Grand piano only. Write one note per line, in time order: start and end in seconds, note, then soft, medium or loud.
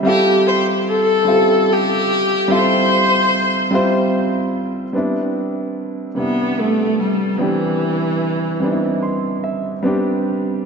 0.03 1.16 G3 medium
0.03 1.16 C4 medium
0.03 1.17 E4 medium
0.03 1.18 F4 medium
0.07 1.18 A4 medium
1.25 2.38 G3 medium
1.25 2.39 C4 medium
1.25 2.39 E4 medium
1.25 2.40 F4 medium
1.29 1.34 G4 medium
1.36 2.44 A4 medium
2.48 3.61 G3 medium
2.48 3.62 C4 medium
2.48 3.62 E4 medium
2.48 3.62 F4 medium
2.52 2.57 A4 medium
2.59 3.66 C5 medium
3.71 4.83 G3 medium
3.71 4.84 C4 medium
3.71 4.85 E4 medium
3.71 4.85 F4 medium
3.75 4.86 C5 medium
4.93 6.06 G3 medium
4.93 6.06 B3 medium
4.93 6.07 C4 medium
4.93 6.07 D4 medium
4.97 6.08 E4 medium
6.15 7.29 C3 soft
6.15 7.28 G3 medium
6.15 7.29 B3 soft
6.15 7.30 D4 soft
6.19 7.30 E4 medium
7.38 8.51 G3 medium
7.38 8.51 B3 medium
7.38 8.52 C4 medium
7.38 8.52 D4 medium
7.42 8.53 G4 medium
8.60 9.73 G3 medium
8.60 9.74 B3 medium
8.60 9.74 C4 medium
8.60 9.75 D4 medium
8.65 8.69 D#4 medium
8.71 9.79 E4 medium
9.03 9.40 C6 medium
9.44 9.81 E5 medium
9.83 10.65 G3 medium
9.83 10.65 B3 medium
9.83 10.65 C4 medium
9.83 10.65 D4 medium
9.87 10.65 G4 medium